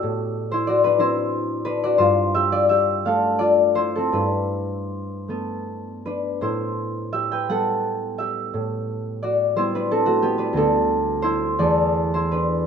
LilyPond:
<<
  \new Staff \with { instrumentName = "Harp" } { \time 6/8 \key g \major \tempo 4. = 58 <bis g' b' c'' e''>8. <e' c''>16 <fis' d''>16 <d' b'>16 <e' c''>4 <d' b'>16 <fis' d''>16 | <f' c''>8 <g' e''>16 <f' d''>16 <g' e''>8 <a' f''>8 <f' d''>8 <e' c''>16 <c' a'>16 | <d' b'>2~ <d' b'>8 <d' b'>8 | <e' c''>4 <g' e''>16 <b' g''>16 <a' fis''>4 <g' e''>8~ |
<g' e''>4 <fis' d''>8 <e' c''>16 <d' b'>16 <c' a'>16 <a fis'>16 <b g'>16 <d' b'>16 | <d' a'>4 <e' c''>8 <a' d''>8. <e' c''>16 <d' b'>8 | }
  \new Staff \with { instrumentName = "Harp" } { \time 6/8 \key g \major <a, b e'>4. <c' d'>4. | g,4. <a d'>4. | g,4. <a b>4. | a,4. <g b>4. |
a,4. <g b>4. | <d, a b>4. <e, a b>4. | }
>>